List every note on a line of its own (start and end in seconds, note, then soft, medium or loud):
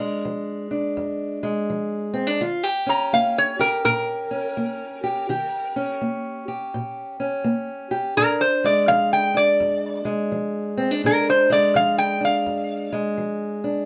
0.00 0.19 A#2 medium
0.00 1.42 G#3 medium
0.00 0.70 D4 medium
0.00 0.22 A#4 loud
0.25 0.92 F3 medium
0.71 2.13 D4 medium
0.97 1.64 F2 medium
1.43 2.41 G#3 medium
1.70 2.36 F3 medium
2.14 2.27 C4 medium
2.27 2.41 D4 soft
2.41 3.08 D#3 medium
2.41 2.63 F4 medium
2.63 3.58 G4 medium
2.86 4.30 C#4 medium
2.86 3.13 A#5 medium
3.13 3.80 A#3 medium
3.13 3.37 F5 medium
3.38 3.61 C#5 medium
3.59 5.02 G4 medium
3.59 3.84 A#4 medium
3.85 4.52 A#2 medium
3.85 5.97 A#4 medium
4.31 5.26 C#4 medium
4.57 5.24 A#3 medium
5.04 5.26 G4 medium
5.29 5.96 D#3 medium
5.29 6.47 G4 medium
5.76 7.19 C#4 medium
6.01 6.68 A#3 medium
6.48 7.90 G4 medium
6.74 7.40 A#2 medium
7.20 8.14 C#4 medium
7.44 8.11 A#3 medium
7.91 8.14 G4 medium
8.17 8.83 A#2 medium
8.17 9.34 D4 medium
8.17 8.40 A#4 medium
8.41 8.64 C5 medium
8.64 10.04 G#3 medium
8.64 8.88 D5 medium
8.88 9.55 F3 medium
8.88 9.12 F5 medium
9.13 9.36 G5 medium
9.34 10.77 D4 medium
9.34 10.06 D5 medium
9.60 10.27 F2 medium
10.05 11.49 G#3 medium
10.32 10.98 F3 medium
10.77 10.91 C4 medium
10.91 11.04 D4 soft
11.04 11.70 A#2 medium
11.04 12.19 D4 medium
11.04 11.28 A#4 medium
11.30 11.52 C5 medium
11.50 12.91 G#3 medium
11.50 11.75 D5 medium
11.75 12.42 F3 medium
11.75 11.98 F5 medium
11.98 12.22 G5 medium
12.21 13.63 D4 medium
12.25 12.94 F5 medium
12.46 13.13 F2 medium
12.93 13.85 G#3 medium
13.18 13.85 F3 medium
13.64 13.85 D4 medium